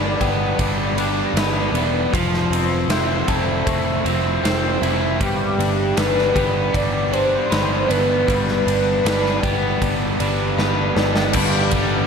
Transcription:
Already playing: picked electric bass G1, overdriven electric guitar G2 G3 D4 B4, clean electric guitar B3 D4
0.21 picked electric bass G1, overdriven electric guitar B3, clean electric guitar G4, kick, ride
0.59 picked electric bass G1, overdriven electric guitar G3 D4, clean electric guitar B3, kick, ride
0.98 overdriven electric guitar G3 D4, clean electric guitar D4, ride
1.34 picked electric bass G1, clean electric guitar B3, overdriven electric guitar B3, snare, ride
1.38 overdriven electric guitar B4
1.72 picked electric bass E1, clean electric guitar B3, overdriven electric guitar B3 D4, ride
2.12 picked electric bass F1, overdriven electric guitar F3, clean electric guitar F3, kick, ride
2.34 snare
2.50 picked electric bass F1, clean electric guitar C4, overdriven electric guitar C4, ride
2.88 picked electric bass F1, overdriven electric guitar E4 C5, clean electric guitar E4, snare, ride
3.27 picked electric bass F1, overdriven electric guitar C4 E4, clean electric guitar A4, kick, ride
3.65 picked electric bass F1, overdriven electric guitar A3 E4, clean electric guitar C4, kick, ride
4.04 picked electric bass F1, overdriven electric guitar F3 C4, clean electric guitar E4, ride
4.43 picked electric bass F1, clean electric guitar F3, overdriven electric guitar C4 C5, snare, ride
4.82 picked electric bass F1, clean electric guitar C4, overdriven electric guitar E4, ride
5.20 picked electric bass G1, overdriven electric guitar G2 G3, clean electric guitar B3, soft synth lead G4, kick, ride
5.58 picked electric bass G1, clean electric guitar B3, overdriven electric guitar D4, ride
5.97 picked electric bass G1, overdriven electric guitar D4 B4, clean electric guitar D4, soft synth lead B4, snare, ride
6.19 snare
6.34 picked electric bass G1, overdriven electric guitar B3, clean electric guitar G4, kick, ride
6.73 picked electric bass G1, overdriven electric guitar G3 D4, soft synth lead D5, kick, ride
7.11 overdriven electric guitar G3 D4, clean electric guitar D4, soft synth lead C5, ride
7.50 picked electric bass G1, overdriven electric guitar B3 B4, snare, ride
7.88 picked electric bass G1, overdriven electric guitar B3 D4, clean electric guitar B3, soft synth lead B4, ride
8.27 picked electric bass G1, overdriven electric guitar G2 G3, clean electric guitar B3, kick, ride
8.48 snare
8.65 picked electric bass G1, clean electric guitar B3, overdriven electric guitar D4, ride
9.04 picked electric bass G1, overdriven electric guitar D4 B4, clean electric guitar D4, snare, ride
9.26 snare
9.43 picked electric bass G1, overdriven electric guitar B3, clean electric guitar G4, kick, ride
9.82 picked electric bass G1, overdriven electric guitar G3 D4, clean electric guitar B3, kick, ride
10.20 picked electric bass G1, overdriven electric guitar G3 D4, clean electric guitar D4, ride
10.57 picked electric bass G1, overdriven electric guitar B3 B4, clean electric guitar B3, snare
10.96 picked electric bass G1, overdriven electric guitar B3 D4, clean electric guitar B3, snare
11.16 snare
11.33 picked electric bass G1, distorted electric guitar G2 D3 G3 B3 D4, overdriven electric guitar G2 G3, clean electric guitar B3, kick, crash
11.71 picked electric bass G1, overdriven electric guitar G3 B3, kick, ride

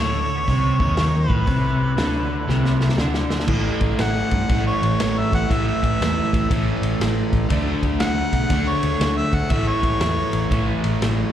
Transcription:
Already playing: picked electric bass D2, overdriven electric guitar D3, tonewheel organ C#4 E4 A4 C#5, harmonica C#5
0.36 tonewheel organ C#4 A4 B4 E5
0.48 picked electric bass C2, overdriven electric guitar C3, kick, open hi-hat
0.80 picked electric bass D#2, overdriven electric guitar D#3, kick
0.97 snare, open hi-hat
1.29 picked electric bass A1, overdriven electric guitar A2, harmonica B4, kick
1.45 picked electric bass C2, overdriven electric guitar C3, tonewheel organ C#4 E4 A4 C#5, kick, open hi-hat
1.86 tonewheel organ C#4 E4 A4 C#5
1.97 picked electric bass D2, overdriven electric guitar D3, snare, open hi-hat
2.39 tonewheel organ A3 E4 A4 C#5
2.48 picked electric bass C2, overdriven electric guitar C3, snare
2.65 snare
2.81 snare
2.89 snare
2.98 picked electric bass D2, overdriven electric guitar D3, snare
3.14 snare
3.30 snare
3.40 snare
3.47 picked electric bass A1, overdriven electric guitar A2 E3 A3, kick, crash
3.81 picked electric bass A1, kick, ride
3.99 picked electric bass A1, harmonica F#5, snare, ride
4.31 picked electric bass G2, kick, ride
4.49 picked electric bass A1, overdriven electric guitar A2 E3 A3, kick, ride
4.67 harmonica C#5
4.82 picked electric bass A1, ride
5.00 picked electric bass A1, snare, ride
5.18 harmonica E5
5.33 picked electric bass A1, harmonica F#5, kick, ride
5.49 picked electric bass A1, overdriven electric guitar A2 E3 A3, harmonica E5, kick, ride
5.68 harmonica E5
5.83 picked electric bass A1, kick, ride
6.00 picked electric bass E2, snare, ride
6.33 picked electric bass A1, kick, ride
6.50 picked electric bass A1, overdriven electric guitar A2 E3 A3, kick, ride
6.82 picked electric bass A1, ride
7.00 picked electric bass A1, snare, ride
7.33 picked electric bass A1, kick, ride
7.49 picked electric bass D2, overdriven electric guitar D3 A3 D4, kick, ride
7.83 picked electric bass D2, kick, ride
8.00 picked electric bass D2, harmonica F#5, snare, ride
8.32 picked electric bass B2, kick, ride
8.50 picked electric bass D2, overdriven electric guitar D3 A3 D4, kick, ride
8.68 harmonica C#5
8.83 picked electric bass D2, ride
9.00 picked electric bass D2, snare, ride
9.17 harmonica E5
9.33 picked electric bass D2, harmonica F#5, kick, ride
9.50 picked electric bass A1, overdriven electric guitar A2 E3 A3, harmonica E5, kick, ride
9.68 harmonica C#5
9.83 picked electric bass A1, kick, ride
10.01 picked electric bass E2, snare, ride
10.33 picked electric bass A1, ride
10.50 picked electric bass A1, overdriven electric guitar A2 E3 A3, kick, ride
10.84 picked electric bass A1, ride
11.02 picked electric bass A1, snare, ride

